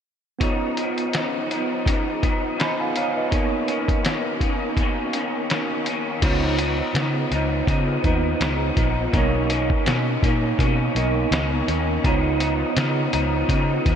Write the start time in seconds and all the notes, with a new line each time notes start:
0.39 C#3 F3 B3 D#4 F4, kick, closed hi-hat
0.44 C#5
0.77 F3 B3 D#4, closed hi-hat
0.98 closed hi-hat
1.13 C#3 F3 B3 D#4, snare, closed hi-hat
1.50 F3 B3 D#4, closed hi-hat
1.85 C#3 F3 B3 D#4, kick, closed hi-hat
2.21 F3 B3 D#4, kick, closed hi-hat
2.58 C#3 F3 B3 D#4 G#5 B5, snare, closed hi-hat
2.80 F5 G#5
2.95 F3 B3 D#4 C#5 F5, closed hi-hat
3.17 B4 D#5
3.30 B2 D#3 A#3 B3 C#4 D#4 A#4, kick, closed hi-hat
3.35 C#5
3.67 D#3 A#3 C#4, closed hi-hat
3.88 kick, closed hi-hat
4.04 B2 D#3 A#3 C#4, snare, closed hi-hat
4.40 D#3 A#3 C#4, kick, closed hi-hat
4.77 B2 D#3 A#3 C#4, kick, closed hi-hat
5.13 D#3 A#3 C#4, closed hi-hat
5.50 B2 D#3 A#3 C#4, snare, closed hi-hat
5.86 D#3 A#3 C#4, closed hi-hat
6.22 C#2 C#3 F3 B3 D#4 F4, kick, closed hi-hat, crash
6.26 C#5
6.59 F3 B3 D#4, closed hi-hat
6.94 C#3 F3 B3 D#4, snare, closed hi-hat
7.31 C#2 F3 B3 D#4, closed hi-hat
7.67 C#3 F3 B3 D#4, kick, closed hi-hat
8.04 D#2 F3 B3 D#4 F4 B4, kick, closed hi-hat
8.40 C#2 C#3 F3 B3 D#4, snare, closed hi-hat
8.76 A#1 F3 B3 D#4, kick, closed hi-hat
9.12 B1 B2 D#3 A#3 C#4 D#4 A#4, kick, closed hi-hat
9.17 C#5
9.50 D#3 A#3 C#4, closed hi-hat
9.70 kick
9.85 B2 D#3 A#3 C#4, snare, closed hi-hat
10.23 A#2 D#3 A#3 C#4, kick, closed hi-hat
10.58 B2 D#3 A#3 C#4, kick, closed hi-hat
10.95 B1 D#3 A#3 B3 C#4 D#4 A#4 D#5, closed hi-hat
11.31 C#2 B2 D#3 A#3 C#4, snare, closed hi-hat
11.67 D#2 D#3 A#3 C#4, closed hi-hat
12.04 C#2 C#3 F3 B3 D#4 F4, kick, closed hi-hat
12.09 C#5
12.40 F3 B3 D#4, closed hi-hat
12.77 C#3 F3 B3 D#4, snare, closed hi-hat
13.13 C#2 F3 B3 D#4, closed hi-hat
13.48 C#3 F3 B3 D#4, kick, closed hi-hat
13.85 D#2 F3 B3 D#4, kick, closed hi-hat